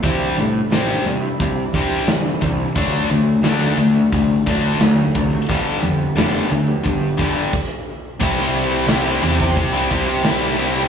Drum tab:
CC |----------------|----------------|------------x---|x---------------|
RD |----------------|----------------|----------------|--x-x-x-x-x-x-x-|
HH |o-o-o-o-o-o-o-o-|o-o-o-o-o-o-o-o-|o-o-o-o-o-o-----|----------------|
SD |----o-------o---|----o-------o---|----o-----------|-o--o-------o--o|
BD |o-------o-o---o-|o-------o-o---o-|o-------o-o-o---|o------oo-o-----|